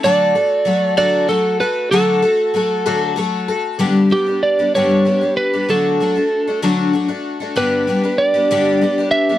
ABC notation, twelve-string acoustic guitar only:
X:1
M:6/8
L:1/16
Q:3/8=64
K:D
V:1 name="Twelve-string acoustic guitar"
[D,F,A,FA]2 [A,FA]2 [F,A,FA]2 [D,F,A,FA]2 [F,A,FA]2 [A,FA]2 | [D,F,A,FA]2 [A,FA]2 [F,A,FA]2 [D,F,A,FA]2 [F,A,FA]2 [A,FA]2 | [G,,D,G,B,DG]2 [G,B,DG] [G,B,DG]2 [G,B,DG] [G,,D,G,B,DG]2 [G,B,DG] [G,B,DG]2 [G,B,DG] | [D,F,A,DF]2 [F,A,DF] [A,DF]2 [A,DF] [D,F,A,DF]2 [F,A,DF] [A,DF]2 [A,DF] |
[G,,D,G,B,DG]2 [G,B,DG] [G,B,DG]2 [G,B,DG] [G,,D,G,B,DG]2 [G,B,DG] [G,B,DG]2 [G,B,DG] |]